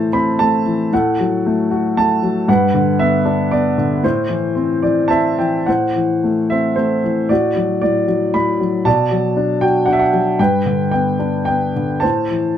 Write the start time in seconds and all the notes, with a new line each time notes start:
Already playing: A2 E3 A3 C5 A5
0.13 C4 B5
0.39 A3 A5
0.66 E3
0.92 A2 A4 F#5
1.20 F#3
1.46 A3
1.71 F#4
1.97 A3 A5
2.23 F#3
2.48 G2 B4 F#5
2.74 D3
2.99 B3 E5
3.25 D4
3.51 B3 D5
3.78 D3
4.04 A2 E4 C5
4.29 E3
4.55 C4
4.83 E3 D5
5.08 C4 E5 A5
5.39 E3 G5
5.66 A2 C5 F#5
5.96 E3
6.24 A3
6.50 C4 E5
6.76 A3 C5
7.04 E3
7.29 A2 F#4 D5
7.56 F#3
7.82 A2 D5
8.08 F#3
8.34 A2 B5
8.60 F#3
8.85 B2 D5 A5
9.11 F#3
9.37 D4
9.61 F#4 G5
9.86 D4 F#5
9.93 E5
9.99 F#5
10.13 F#3
10.39 G2 B4 G5
10.66 D3
10.91 B3 G5
11.19 D4
11.45 B3 G5
11.76 D3
12.00 A2 C5 A5
12.31 E3